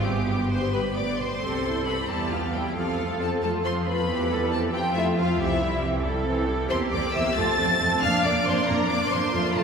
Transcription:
0.02 G1 G2 B3 G4 D6
0.49 C5 C6
0.73 G2 B4 B5
0.95 A2 D5 D6
1.19 B2 C5 C6
1.42 C2 C4 G4 A4
1.64 E4 C5
1.87 C4 G4 B4 B5
2.09 E2 G3 E4 G4 A4 A5
2.31 B3 F4 G4 F5
2.54 G3 E4 G4 G5
2.75 F2 F3 C4 F4 A4 F5
2.99 A3 F4
3.20 F3 C4 A4 A5
3.42 A3 F4 A4 A5
3.64 F3 C4 C5 C6
3.86 A3 F4 B4 B5
4.08 E2 E3 C4 G4
4.30 G3 E4 A4
4.51 E3 C4 G4 A4 A5
4.73 F2 F3 C4 F4 G4 G5
4.96 A3 E4 F4 E5
5.17 F3 C4 F4 F5
5.39 C2 E3 C4 E4 G4 E5
5.62 G3 E4
5.83 E3 C4 G4
6.05 G3 E4 A4
6.26 E3 C4
6.47 G3 E4
6.69 E2 A#3 C4 G4 C5 C6
6.91 E2 A#3 C4 D5 D6
7.13 E2 A#3 C4 E5 E6
7.36 F2 A3 C4 F4 A5 A6
7.59 F2 A3 C4 D4
7.80 F2 A3 C4
8.01 F2 A#3 D4 F5 F6
8.24 F2 A#3 D4 D5 D6
8.45 F2 A#3 D4 C5 C6
8.67 F2 A#3 D4 A#4 A#5
8.89 F2 A#3 D4 D5 D6
9.10 F2 A#3 D4 C5 C6
9.33 F2 A3 F4
9.55 F2 A3 F4 A4 A5

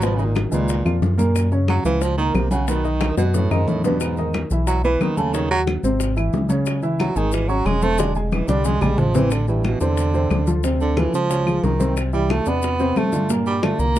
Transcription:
Already playing: G#1
0.02 B2 F3 B3 B4, high bongo, high conga, maracas
0.15 C#3, maracas
0.19 D#3 D#4 D#5, high bongo, high conga
0.25 A#2
0.35 F#2, high bongo, high conga, claves, maracas
0.51 C#2 A#2 D#3 G#3 B4, high conga, maracas
0.69 high bongo, high conga, maracas
0.85 F2 F3 F4 F5, high bongo, high conga, claves, maracas
1.02 F#2, high bongo, low bongo, high conga, maracas
1.18 A#2 A#3 A#4, high conga, maracas
1.35 high bongo, high conga, claves, maracas
1.52 C#3 C#4 C#5, high bongo, high conga, maracas
1.68 F#3, high bongo, high conga, claves, maracas
1.85 C#2 E3 F3 F4 F5, high bongo, high conga, maracas
2.01 F3, high bongo, high conga, maracas
2.17 D#3 A#3 A#4 A#5, high bongo, high conga, maracas
2.34 B1 C3, high bongo, low bongo, high conga, claves, maracas
2.51 C#3 F#3 F#4 F#5, high conga, maracas
2.68 B2 D#3 B3 B4, high bongo, high conga, maracas
2.84 D#3 D#4 D#5, high bongo, high conga, maracas
3.01 high bongo, high conga, claves, maracas
3.17 F#2 B2 B3 B4, high bongo, high conga, maracas
3.34 A2, low bongo, high conga, maracas
3.51 F#2 G#2 D#3 D#4 D#5, low bongo, high conga, claves, maracas
3.68 E2 A2, high conga, maracas
3.84 G2 B2 B3 B4, low bongo, high conga, maracas
4.00 G#2, high bongo, claves, maracas
4.17 D#3 D#4 D#5, high bongo, high conga, maracas
4.34 high bongo, high conga, claves, maracas
4.50 B1 E3 E4 E5, high bongo, high conga, maracas
4.67 F#3, high bongo, high conga, maracas
4.84 E3 B3 B4 B5, high bongo, high conga, maracas
5.01 D#2 D#3, high bongo, low bongo, high conga, claves, maracas
5.17 C#3 A3 A4 A5, high conga, maracas
5.33 C#3 D#3 C#4 C#5, high bongo, high conga, maracas
5.51 F#3 F#4 F#5, high bongo, high conga, maracas
5.67 high bongo, high conga, claves, maracas
5.83 G#1 C3 C4 C5, high bongo, high conga, maracas
6.00 high bongo, high conga, maracas
6.16 E3 E4 E5, high bongo, high conga, claves, maracas
6.33 C#2, high bongo, low bongo, high conga, maracas
6.49 C#3 C#4 C#5, high conga, maracas
6.66 high bongo, high conga, claves, maracas
6.83 E3 E4 E5, high bongo, high conga, maracas
6.99 F#3, high bongo, high conga, claves, maracas
7.16 G#1 D#3 G#3 G#4 G#5, high bongo, high conga, maracas
7.32 E3, high bongo, high conga, maracas
7.49 F#3 C#4 C#5 C#6, high bongo, high conga, maracas
7.65 E1 G#3, high bongo, low bongo, high conga, claves, maracas
7.82 A3 C4 C5 C6, high conga, maracas
7.98 D3 G#3 D4 D5, high bongo, maracas
8.15 C3 G#3 G#4 G#5, high conga, maracas
8.32 E3, low bongo, high conga, claves, maracas
8.48 C2 D3 G3 D4 D5, high conga, maracas
8.65 G#3, low bongo, maracas
8.81 A#1 G3 G#3 G#4 G#5, low bongo, low conga, claves, maracas
8.98 A1 F3, low conga, maracas
9.15 C3 E3 C4 C5, low bongo, low conga, maracas
9.31 D3, high bongo, high conga, claves, maracas
9.48 G2 E3 E4 G4, high bongo, high conga, maracas
9.64 B2, high bongo, high conga, claves, maracas
9.80 E2 C3 D3 C4 C5, high bongo, high conga, maracas
9.97 high bongo, high conga, maracas
10.14 C3 C4 C5, high bongo, high conga, maracas
10.30 D2, high bongo, low bongo, high conga, claves, maracas
10.47 F3 F4 A4, high conga, maracas
10.64 C3 C4 C5, high bongo, high conga, maracas
10.80 D3, high bongo, high conga, maracas
10.97 E3 F3 F4 A4, high bongo, high conga, claves, maracas
11.13 C#2 F3, high bongo, high conga, maracas
11.30 C#3 C#4 C#5, high bongo, high conga, maracas
11.46 F3 F4 G#4, high bongo, high conga, claves, maracas
11.63 C2 D#3, high bongo, low bongo, high conga, maracas
11.79 C3 C4 C5, high conga, maracas
11.97 high bongo, high conga, claves, maracas
12.13 E3 G3 E4 G4, high bongo, high conga, maracas
12.29 A3, high bongo, high conga, claves, maracas
12.46 E2 C3 B3 D4 D5, high bongo, high conga, maracas
12.62 high bongo, high conga, maracas
12.79 C3 C4 C5, high bongo, high conga, maracas
12.96 G2 A3, high bongo, low bongo, high conga, claves, maracas
13.12 D3 D4 F4, high conga, maracas
13.29 A#2 A#3 A#4, high bongo, high conga, maracas
13.46 G3, high bongo, high conga, maracas
13.63 D3 A3 D4 F4, high bongo, high conga, claves, maracas
13.79 C2 A#3, high bongo, high conga, maracas
13.95 A#2 A#3 A#4, maracas

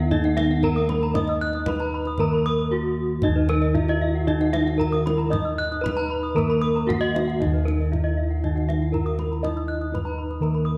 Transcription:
Already playing: D#2 B3 D#4 E4
0.00 F#5
0.11 D#3 A#3 D#4 D#5, kendang low
0.24 F#5, kendang slap
0.37 E5, kendang high
0.45 B3
0.51 F#5, kendang slap
0.62 E4 A#4 A#5, kendang low
0.74 A#3 D#6
0.89 B5, kendang high
1.03 A#5, kendang slap
1.14 D#4 D#5 D#6, kendang high, kendang low
1.27 E6, kendang slap
1.41 F#6
1.53 D#6, kendang slap
1.66 E4 B4 B5, kendang high, kendang low
1.80 A#5, kendang slap
1.94 B5
2.05 D#6, kendang slap
2.18 D#3 A#3 A#4 A#5, kendang low
2.33 B5
2.46 D#6
2.71 E4 F#4
3.22 D#3 D#4 D#5, kendang high, kendang low
3.27 D#2
3.36 B4
3.49 A#4, kendang high
3.62 D#4 D#5, kendang slap
3.74 E4 F#4 E5, kendang low
3.88 D#5, kendang slap
4.01 E5
4.09 F#4
4.15 F#5
4.27 D#3 D#4 D#5, kendang low
4.41 F#5, kendang slap
4.48 E4
4.53 E5, kendang high
4.66 F#4 F#5, kendang slap
4.78 E4 A#4 A#5, kendang low
4.92 D#6, kendang slap
5.06 E4 B5, kendang high
5.18 A#5, kendang slap
5.30 D#4 D#5 D#6, kendang high, kendang low
5.45 E6
5.58 F#6
5.72 D#6, kendang slap
5.81 E4 B4 B5
5.86 kendang high, kendang low
5.97 A#5, kendang slap
6.10 B5
6.23 D#6
6.35 D#3 A#3 A#4 A#5, kendang low
6.50 B5, kendang slap
6.62 D#6
6.76 A#5, kendang slap
6.87 E4 F#4 F#5, kendang high, kendang low
7.01 D#5
7.15 E5, kendang high
7.28 F#5, kendang slap
7.40 D#3 D#4 D#5, kendang high, kendang low
7.45 D#2
7.53 B4
7.65 A#4, kendang high
7.80 D#5, kendang slap
7.92 E4 E5, kendang low
8.04 D#5, kendang slap
8.17 E5
8.31 F#5
8.44 D#3 D#4 D#5, kendang low
8.53 F#4 F#5, kendang slap
8.69 E5, kendang high
8.79 E4 F#5, kendang slap
8.92 E4 A#4 A#5, kendang low
9.04 F#4 D#6, kendang slap
9.19 B5, kendang high
9.28 E4 A#5
9.33 kendang slap
9.43 D#4 D#5 D#6, kendang high, kendang low
9.57 E6, kendang slap
9.68 F#6
9.78 E4 D#6, kendang slap
9.90 D#4 E4
9.94 B4 B5, kendang high, kendang low
10.05 A#5, kendang slap
10.18 B5
10.31 D#6, kendang slap
10.41 D#3 A#3 A#4 A#5, kendang low
10.54 B5, kendang slap
10.65 D#6

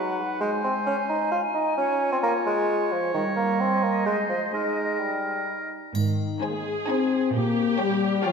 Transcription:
Already playing: F#3 D#4 B4 F#5
0.40 G#3 C5 G#5
0.64 C4
0.86 C#4
1.09 D#4
1.32 F4
1.55 D#4
1.77 C#4 F4 C#5
2.12 C4
2.23 A#3
2.46 G#3
2.92 F3
3.14 D#3 G3 D#5
3.37 A#3
3.60 C4
3.83 A#3
4.06 G#3 C5
4.29 F3
4.53 G#3 D#4 A#4
5.00 G3
5.95 G#2 D#3, triangle
6.41 G#3 D#4 G#4 C5 G#5
6.48 A#3
6.55 G#3
6.87 C4 D#4 C5 G#5
7.33 A#2 A#3 G4
7.78 G3 G4 C#5 G5
8.24 F3 F4 G4 C#5 G5

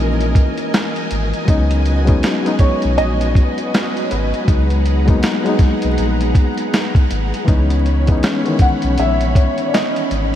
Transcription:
Already playing: E3 G#3 A#3 C#4 D#4 F#4 A#4 D#5 G#5
0.00 A#1
0.21 closed hi-hat
0.35 kick, closed hi-hat
0.58 closed hi-hat
0.74 snare, closed hi-hat
0.96 closed hi-hat
1.11 G#1, closed hi-hat
1.34 closed hi-hat
1.45 F#3 G#3 B3 C#4 F#4 B4, kick, closed hi-hat
1.49 C#2 D#4
1.71 closed hi-hat
1.86 closed hi-hat
2.05 F#3 G#3 B3 C#4, kick, closed hi-hat
2.09 D#4
2.23 snare, closed hi-hat
2.43 F#3 G#3 B3 C#4, closed hi-hat
2.47 D#4
2.59 C#5, kick, closed hi-hat
2.82 B1, closed hi-hat
2.98 A#1 D#5, closed hi-hat
3.21 closed hi-hat
3.35 kick, closed hi-hat
3.58 closed hi-hat
3.74 snare, closed hi-hat
3.97 closed hi-hat
4.04 C#5
4.11 G#1 B4, closed hi-hat
4.34 closed hi-hat
4.45 C#2 F#3 G#3 B3 G#4 F#5 A#5, kick, closed hi-hat
4.50 D#4
4.70 closed hi-hat
4.86 closed hi-hat
5.05 F#3 G#3 A#3 B3, kick, closed hi-hat
5.10 D#4
5.23 snare, closed hi-hat
5.44 F#3 G#3 B3, closed hi-hat
5.49 D#4
5.59 kick, snare, closed hi-hat
5.82 B1, closed hi-hat
5.98 A#1, closed hi-hat
6.21 closed hi-hat
6.35 kick, closed hi-hat
6.58 closed hi-hat
6.74 snare, closed hi-hat
6.95 kick, closed hi-hat
7.11 G#1, closed hi-hat
7.34 closed hi-hat
7.44 E3 G#3 B3 C#4 C#5 B5, kick, closed hi-hat
7.49 C#2 D#4
7.70 closed hi-hat
7.86 closed hi-hat
8.07 E3 G#3 B3 C#4, kick, closed hi-hat
8.12 D#4
8.23 snare, closed hi-hat
8.43 D#3 G#3 B3 C#4, closed hi-hat
8.48 D#3 E3
8.59 F#5, kick, closed hi-hat
8.82 B1, closed hi-hat
8.98 A#1 E5, closed hi-hat
9.21 closed hi-hat
9.35 C#5, kick, closed hi-hat
9.58 closed hi-hat
9.68 D5
9.74 D#5, snare, closed hi-hat
9.96 closed hi-hat
10.11 G#1, closed hi-hat

